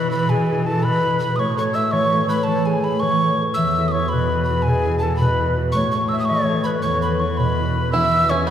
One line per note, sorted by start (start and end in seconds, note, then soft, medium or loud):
0.00 0.27 B2 medium
0.00 1.40 E3 medium
0.00 2.12 B3 medium
0.00 0.83 C#4 soft
0.00 0.11 E4 medium
0.00 0.12 F#4 soft
0.00 0.11 G#4 medium
0.11 0.47 E4 soft
0.11 0.48 F#4 soft
0.11 0.49 G#4 medium
0.11 0.27 B4 medium
0.11 0.31 B5 loud
0.28 0.82 B2 medium
0.28 0.48 G#4 medium
0.28 0.68 G#5 loud
0.48 0.66 E4 soft
0.48 0.66 F#4 soft
0.48 0.66 G#4 medium
0.48 0.65 G#4 medium
0.66 1.02 E4 soft
0.66 1.02 F#4 soft
0.66 1.03 G#4 medium
0.66 0.86 A4 medium
0.66 0.84 A5 medium
0.83 1.43 B2 medium
0.83 1.21 B4 medium
0.83 1.19 B5 loud
1.02 1.20 E4 medium
1.02 1.20 F#4 soft
1.02 1.20 G#4 medium
1.19 3.77 E4 soft
1.19 3.64 F#4 soft
1.19 1.43 G#4 medium
1.19 1.38 B4 medium
1.19 1.37 B5 loud
1.36 3.58 A2 medium
1.36 1.79 A3 medium
1.36 1.57 C#5 medium
1.36 1.57 C#6 loud
1.36 1.40 D#6 loud
1.56 1.73 G#4 soft
1.56 1.73 A4 soft
1.56 1.74 C#5 medium
1.56 1.77 C#5 medium
1.56 1.64 C#6 medium
1.73 2.11 G#4 soft
1.73 2.12 A4 soft
1.73 2.12 C#5 medium
1.73 1.94 E5 medium
1.73 1.93 E6 medium
1.91 2.46 E3 medium
1.91 2.31 C#5 medium
1.91 2.29 C#6 loud
2.12 2.28 G#4 soft
2.12 2.28 A4 soft
2.12 2.29 C#5 medium
2.28 2.66 G#4 soft
2.28 2.73 A4 soft
2.28 2.46 B4 medium
2.28 2.67 C#5 medium
2.28 2.45 B5 medium
2.44 3.00 E3 medium
2.44 2.68 A4 medium
2.44 2.67 A5 loud
2.66 3.28 A3 soft
2.66 3.04 G#4 medium
2.66 2.84 G#4 soft
2.66 2.85 C#5 medium
2.66 2.85 G#5 medium
2.84 3.22 G#4 soft
2.84 3.22 A4 soft
2.84 3.22 C#5 soft
2.84 3.01 B5 medium
3.00 3.57 E3 medium
3.00 3.44 C#5 medium
3.00 3.42 C#6 loud
3.22 3.39 G#4 medium
3.22 3.39 A4 soft
3.22 3.40 C#5 medium
3.39 3.78 G#4 soft
3.39 3.85 A4 soft
3.39 5.32 C#5 medium
3.54 5.77 E2 medium
3.54 4.16 E3 medium
3.54 3.91 E5 medium
3.54 3.89 E6 loud
3.77 3.95 E4 soft
3.77 3.96 F#4 soft
3.77 3.96 G#4 medium
3.88 4.10 C#6 medium
3.88 3.93 D#6 medium
3.93 4.30 E4 soft
3.93 4.32 F#4 soft
3.93 4.35 G#4 medium
3.93 4.09 C#5 medium
4.09 4.65 B2 medium
4.09 4.65 B4 medium
4.09 4.43 B5 medium
4.30 4.49 E4 soft
4.30 4.49 F#4 soft
4.35 4.50 G#4 medium
4.44 4.64 B5 medium
4.49 4.86 E4 soft
4.49 4.86 F#4 soft
4.49 4.87 G#4 medium
4.62 4.70 B4 medium
4.62 4.98 G#5 loud
4.67 5.19 B2 medium
4.67 5.04 G#4 medium
4.86 5.03 E4 soft
4.86 5.03 F#4 soft
4.86 5.04 G#4 medium
4.99 5.20 A4 medium
4.99 5.16 A5 medium
5.03 5.39 E4 soft
5.03 5.40 F#4 soft
5.03 5.41 G#4 medium
5.16 5.80 B2 medium
5.16 5.47 B5 loud
5.20 5.55 B4 medium
5.40 5.56 E4 soft
5.40 5.57 F#4 soft
5.40 5.57 G#4 medium
5.57 7.04 E4 soft
5.57 8.01 F#4 soft
5.57 5.81 G#4 medium
5.72 6.85 A2 medium
5.72 6.17 A3 medium
5.72 5.94 C#5 medium
5.72 5.91 C#6 loud
5.91 6.11 G#4 soft
5.91 6.10 C#6 medium
5.96 6.11 A4 soft
5.96 6.12 C#5 soft
6.09 6.48 G#4 soft
6.09 6.49 A4 soft
6.09 6.50 C#5 medium
6.09 6.31 E5 medium
6.09 6.19 E6 medium
6.20 6.27 D#6 medium
6.25 6.63 C#6 loud
6.30 6.82 E3 medium
6.30 6.68 C#5 medium
6.49 6.67 G#4 soft
6.49 6.67 A4 soft
6.49 6.68 C#5 medium
6.64 7.05 G#4 soft
6.64 7.11 A4 soft
6.64 6.86 B4 medium
6.64 6.70 B5 medium
6.68 8.50 C#5 soft
6.82 7.91 E2 medium
6.82 7.44 E3 medium
6.82 7.03 C#5 medium
6.82 7.01 C#6 loud
7.02 7.20 E4 soft
7.02 7.21 G#4 soft
7.02 7.20 B4 medium
7.02 7.22 B4 medium
7.02 7.21 B5 medium
7.20 7.59 E4 soft
7.20 7.60 G#4 soft
7.20 7.60 B4 soft
7.20 7.40 C#5 medium
7.20 7.39 C#6 medium
7.37 7.99 B2 medium
7.37 7.93 B4 medium
7.37 7.92 B5 medium
7.60 7.76 E4 medium
7.60 7.77 G#4 soft
7.60 7.77 B4 soft
7.77 8.14 E4 soft
7.77 8.15 G#4 soft
7.77 8.50 B4 medium
7.92 8.50 E2 medium
7.92 8.50 E3 medium
7.92 8.28 E4 medium
7.92 7.98 F#5 medium
7.92 8.31 E6 loud
7.97 8.32 E5 loud
8.15 8.31 E4 soft
8.15 8.32 F#4 soft
8.15 8.32 G#4 medium
8.29 8.47 C#4 medium
8.29 8.50 E4 medium
8.29 8.50 F#4 soft
8.29 8.50 G#4 medium
8.29 8.50 C#5 medium
8.29 8.46 C#6 loud
8.47 8.50 B3 medium
8.47 8.50 B5 loud